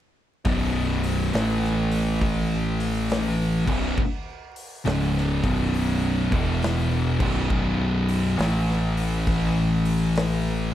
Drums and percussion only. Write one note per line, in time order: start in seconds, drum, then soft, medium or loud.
0.45 kick loud
0.45 open hi-hat medium
1.03 open hi-hat medium
1.33 snare loud
1.33 open hi-hat medium
1.64 snare soft
1.92 open hi-hat medium
2.22 kick loud
2.22 open hi-hat medium
2.80 open hi-hat medium
3.10 snare loud
3.10 open hi-hat medium
3.68 kick loud
3.68 crash loud
3.98 kick loud
4.56 open hi-hat medium
4.86 snare loud
4.86 open hi-hat medium
5.17 snare soft
5.44 kick loud
5.44 open hi-hat medium
5.74 open hi-hat medium
6.32 kick loud
6.32 open hi-hat medium
6.62 snare loud
6.62 open hi-hat medium
7.20 kick loud
7.20 crash loud
7.50 kick loud
8.09 open hi-hat medium
8.39 snare loud
8.39 open hi-hat medium
8.70 snare soft
8.97 open hi-hat medium
9.27 kick loud
9.27 open hi-hat medium
9.85 open hi-hat medium
10.16 snare loud
10.16 open hi-hat medium